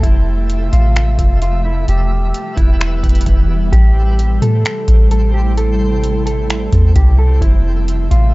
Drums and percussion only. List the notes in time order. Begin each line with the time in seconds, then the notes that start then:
0.03 kick, closed hi-hat
0.50 closed hi-hat
0.73 closed hi-hat
0.96 finger snap, closed hi-hat
1.19 kick, closed hi-hat
1.42 closed hi-hat
1.88 closed hi-hat
2.34 closed hi-hat
2.57 kick, closed hi-hat
2.81 finger snap, closed hi-hat
3.04 kick, closed hi-hat
3.09 closed hi-hat
3.15 closed hi-hat
3.21 closed hi-hat
3.26 kick, closed hi-hat
3.73 kick, closed hi-hat
4.19 closed hi-hat
4.42 closed hi-hat
4.65 finger snap, closed hi-hat
4.88 kick, closed hi-hat
5.11 closed hi-hat
5.57 closed hi-hat
6.04 closed hi-hat
6.27 closed hi-hat
6.50 finger snap, closed hi-hat
6.73 kick, closed hi-hat
6.96 kick, closed hi-hat
7.42 kick, closed hi-hat
7.88 closed hi-hat
8.11 closed hi-hat